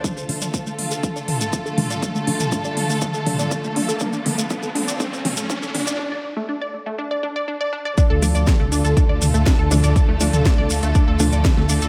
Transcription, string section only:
X:1
M:4/4
L:1/8
Q:1/4=121
K:Dm
V:1 name="String section"
[D,A,FA]8- | [D,A,FA]8- | [D,A,FA]8 | z8 |
[D,A,FA]8- | [D,A,FA]8 |]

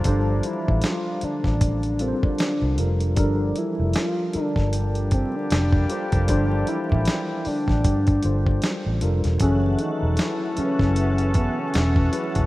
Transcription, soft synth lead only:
X:1
M:4/4
L:1/16
Q:"Swing 16ths" 1/4=77
K:Gdor
V:1 name="Soft synth lead"
D2 E2 F2 D4 C D3 z2 | D2 E2 F2 D4 C D3 z2 | D2 E4 D6 z4 | ^C2 _E2 =E2 C4 =B, C3 z2 |]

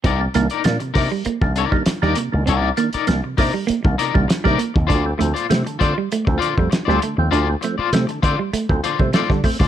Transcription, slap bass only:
X:1
M:4/4
L:1/16
Q:1/4=99
K:Cdor
V:1 name="Slap bass" clef=bass
C,,2 C,, z B,, z C, z2 C,,2 z2 E,, z _D,, | C,,2 z2 C,, z C, z2 C,, z C,, z C, z E,, | D,,2 D,, z C, z D, z2 D,, z F,, z D,, z E,, | D,,2 z2 C, z D, z2 D,, z C, z D, z _D,, |]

